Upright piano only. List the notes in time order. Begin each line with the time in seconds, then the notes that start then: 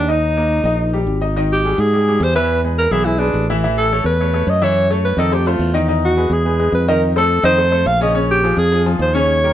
0.08 D#4 D#5
0.37 A#3 A#4
0.65 D#4 D#5
0.93 G3 G4
1.21 D#4 D#5
1.36 D#3 D#4 D#5
1.64 G3 G4 G#4
1.93 G3 G4 G#4
2.08 G3 G4 G#4
2.35 E3 E4 E5
2.64 G#3 G#4 B4
2.92 E3 E4 E5
3.06 G#3 G#4 B4
3.20 G#3 G#4 B4
3.50 E3 E4 E5
3.64 E3 E4 E5
3.92 A3 A4 C#5
4.20 A3 A4 C#5
4.33 A3 A4 C#5
4.62 E3 E4 E5
4.90 A3 A4 C#5
5.18 D#3 D#4 D#5
5.32 A3 A4 C5
5.47 A3 A4 C5
5.74 D#3 D#4 D#5
5.88 D#3 D#4 D#5
6.17 G#3 G#4 B4
6.45 G#3 G#4 B4
6.59 G#3 G#4 B4
6.88 D#3 D#4 D#5
7.16 A3 A4 C5
7.44 D#3 D#4 D#5
7.57 A3 A4 C5
7.72 A3 A4 C5
8.01 C#3 C#4 C#5
8.14 C#3 C#4 C#5
8.44 F3 F4 G#4
8.72 F3 F4 G#4
8.86 F3 F4 G#4
9.15 C#3 C#4 C#5
9.44 G3 G4 A#4